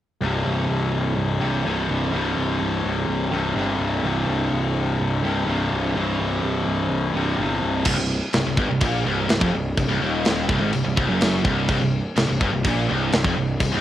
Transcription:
0.21 0.44 C1 medium
0.21 1.41 C2 medium
0.21 1.39 G2 medium
0.21 1.39 C3 medium
0.45 0.68 C1 medium
0.69 1.15 C1 medium
1.16 1.40 C1 medium
1.40 1.64 C1 medium
1.40 1.64 C2 medium
1.40 1.63 G2 medium
1.40 1.66 C3 medium
1.64 1.88 C1 medium
1.64 2.11 C2 medium
1.64 2.11 G2 medium
1.64 2.13 C3 medium
1.89 2.12 C1 medium
2.11 2.36 C1 medium
2.11 3.34 C2 medium
2.11 3.31 G2 medium
2.11 3.30 C3 loud
2.37 2.59 C1 medium
2.60 2.83 C1 medium
2.84 3.07 C1 medium
3.07 3.31 C1 medium
3.31 3.54 C1 medium
3.31 3.55 C2 medium
3.31 3.55 G2 medium
3.31 3.57 C3 medium
3.55 3.78 G1 medium
3.55 4.03 C2 medium
3.55 4.02 G2 medium
3.55 4.06 C3 medium
3.79 4.02 C1 medium
4.03 4.26 C1 medium
4.03 5.26 C2 medium
4.03 5.22 G2 medium
4.03 5.23 C3 loud
4.27 4.50 C1 medium
4.52 4.98 C1 medium
4.99 5.22 C1 medium
5.23 5.46 C1 medium
5.23 5.47 C2 medium
5.23 5.47 G2 medium
5.23 5.49 C3 medium
5.47 5.70 C1 medium
5.47 5.95 C2 medium
5.47 5.94 G2 medium
5.47 5.98 C3 medium
5.71 5.94 C1 medium
5.94 6.18 C1 medium
5.94 7.13 C2 medium
5.94 7.14 G2 medium
5.94 7.13 C3 loud
6.19 6.42 C1 medium
6.42 6.65 C1 medium
6.66 6.88 C1 medium
6.89 7.13 C1 medium
7.14 7.37 C1 medium
7.14 7.36 C2 medium
7.14 7.37 G2 medium
7.14 7.37 C3 medium
7.37 7.61 G1 medium
7.37 7.84 C2 medium
7.37 7.85 G2 medium
7.37 7.86 C3 medium
7.62 7.85 C1 medium
7.85 7.97 C1 loud
7.85 7.96 C2 loud
7.85 kick loud
7.85 crash loud
7.85 crash medium
7.97 8.20 C1 medium
7.97 8.17 C2 medium
8.33 8.45 C1 medium
8.33 8.45 C2 medium
8.33 snare loud
8.33 crash medium
8.46 8.56 C1 medium
8.46 8.57 C2 medium
8.57 8.68 G1 loud
8.57 8.69 G2 loud
8.57 kick loud
8.70 8.81 C1 medium
8.70 8.81 C2 medium
8.80 9.04 A#1 medium
8.80 9.05 A#2 loud
8.80 kick loud
8.80 crash medium
9.05 9.28 C1 medium
9.05 9.29 C2 medium
9.29 9.40 C1 medium
9.29 9.41 C2 medium
9.29 snare loud
9.29 crash medium
9.41 9.52 F1 loud
9.41 9.53 F2 loud
9.41 kick loud
9.52 9.75 C1 medium
9.52 9.73 C2 medium
9.77 9.88 C1 medium
9.77 9.87 C2 medium
9.77 kick medium
9.77 crash medium
9.88 10.00 C1 loud
9.88 10.00 C2 loud
10.01 10.46 D#1 loud
10.01 10.48 D#2 loud
10.25 snare loud
10.25 crash medium
10.48 10.60 C1 loud
10.48 10.60 C2 loud
10.48 kick loud
10.61 10.72 G#1 loud
10.61 10.72 G#2 medium
10.73 10.84 C1 medium
10.73 10.85 C2 medium
10.73 crash medium
10.86 10.96 C1 medium
10.86 10.96 C2 medium
10.97 11.08 C1 medium
10.97 11.08 C2 loud
10.97 kick loud
11.09 11.42 F#1 loud
11.09 11.44 F#2 loud
11.21 snare loud
11.21 crash medium
11.44 11.67 C1 loud
11.44 11.68 C2 loud
11.44 kick loud
11.69 11.80 C1 loud
11.69 11.79 C2 loud
11.69 kick loud
11.69 crash medium
11.80 12.04 C1 medium
11.80 11.99 C2 medium
12.16 12.28 C1 medium
12.16 12.27 C2 medium
12.16 snare loud
12.16 crash medium
12.28 12.40 C1 medium
12.28 12.40 C2 medium
12.41 12.52 G1 loud
12.41 12.52 G2 loud
12.41 kick loud
12.53 12.64 C1 medium
12.53 12.65 C2 medium
12.65 12.87 A#1 medium
12.65 12.88 A#2 loud
12.65 kick loud
12.65 crash medium
12.89 13.11 C1 loud
12.89 13.12 C2 loud
13.12 13.24 C1 medium
13.12 13.23 C2 medium
13.12 snare loud
13.12 crash medium
13.24 13.35 F1 loud
13.24 13.35 F2 loud
13.24 kick loud
13.36 13.59 C1 medium
13.36 13.55 C2 medium
13.60 13.71 C1 medium
13.60 13.70 C2 medium
13.60 kick medium
13.60 crash medium
13.72 13.81 C1 loud
13.72 13.81 C2 loud

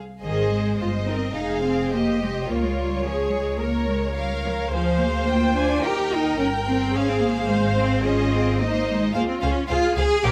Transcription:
0.23 0.76 G#1 soft
0.23 0.50 D#3 medium
0.23 0.76 G#4 medium
0.23 0.76 G#4 soft
0.23 0.80 C5 soft
0.23 0.76 D#5 soft
0.52 1.07 G#3 medium
0.80 1.37 G1 soft
0.80 0.88 F4 soft
0.80 1.09 C5 soft
0.80 1.35 D#5 soft
1.08 1.37 C4 medium
1.08 1.16 D#4 soft
1.08 1.37 A#4 soft
1.36 2.47 F1 soft
1.36 1.64 D#4 medium
1.36 1.92 G#4 soft
1.36 1.93 G#4 soft
1.36 2.48 C5 soft
1.36 1.93 F5 soft
1.65 1.93 C4 medium
1.93 2.21 A#3 medium
1.93 2.49 G4 soft
1.93 2.50 G4 soft
1.93 2.48 D#5 soft
2.22 2.30 G#3 medium
2.49 4.72 C#2 soft
2.49 2.63 A#3 medium
2.49 3.05 F4 soft
2.49 3.04 F4 medium
2.49 3.05 A#4 soft
2.49 3.58 C#5 soft
2.63 2.77 G#3 medium
2.77 3.05 G3 medium
3.05 3.33 F3 medium
3.05 3.59 G#4 medium
3.05 3.60 G#4 soft
3.05 3.59 C#5 soft
3.32 3.60 G#3 medium
3.60 3.88 A#3 medium
3.60 4.15 A#4 soft
3.60 4.15 C#5 soft
3.60 4.70 C#5 soft
3.88 4.15 G#3 medium
4.16 4.24 G3 medium
4.16 4.71 A#4 soft
4.16 4.71 A#4 medium
4.16 4.72 F5 soft
4.45 4.53 F3 medium
4.73 5.81 D2 medium
4.73 5.00 F3 medium
4.73 5.27 G#4 soft
4.73 5.84 C5 soft
4.73 5.84 C5 medium
4.73 5.28 F5 soft
5.00 5.55 A#3 medium
5.29 5.84 F4 soft
5.29 5.56 G5 soft
5.55 5.83 D4 medium
5.55 5.84 G#5 soft
5.83 6.38 D#2 soft
5.83 6.39 D#4 soft
5.83 6.11 G4 medium
5.83 6.91 A#4 medium
5.83 6.37 A#4 soft
5.83 6.38 G5 soft
6.11 6.38 D#4 medium
6.38 6.92 G1 soft
6.38 6.47 C#4 medium
6.38 6.93 A#4 soft
6.38 6.93 G5 medium
6.66 6.93 C4 medium
6.93 9.14 G#1 medium
6.93 7.08 C#4 medium
6.93 7.48 G#4 medium
6.93 8.06 G#4 medium
6.93 8.57 C5 medium
6.93 8.06 F5 soft
7.09 7.22 C4 medium
7.22 7.49 A#3 medium
7.48 7.77 G#3 medium
7.48 8.03 C5 medium
7.77 8.05 C4 medium
8.04 8.33 C#4 medium
8.04 8.61 F4 medium
8.04 8.59 G#4 medium
8.04 8.59 D#5 soft
8.33 8.60 C4 medium
8.60 8.88 A#3 medium
8.60 9.14 D#4 medium
8.60 9.15 D#4 medium
8.60 9.13 C5 medium
8.60 9.13 D#5 medium
8.88 9.15 G#3 medium
9.13 9.23 C#2 medium
9.13 9.20 A#3 medium
9.13 9.67 F4 medium
9.13 9.24 G#4 medium
9.13 9.24 C5 medium
9.13 9.22 F5 medium
9.28 9.41 C4 medium
9.42 9.51 C#2 medium
9.42 9.69 C#4 medium
9.42 9.51 G#4 soft
9.42 9.51 C5 soft
9.42 9.50 F5 medium
9.68 9.78 C#2 medium
9.68 9.96 F4 medium
9.68 10.24 G#4 medium
9.68 9.79 G#4 medium
9.68 9.78 C5 medium
9.68 9.76 F5 medium
9.95 10.05 C#2 medium
9.95 10.23 G#4 medium
9.95 10.06 G#4 soft
9.95 10.06 C5 soft
9.95 10.03 F5 medium
10.22 10.32 A#1 medium
10.22 10.32 G4 medium
10.22 10.32 G4 soft
10.22 10.32 A#4 medium
10.22 10.32 C#5 medium
10.22 10.30 F5 medium

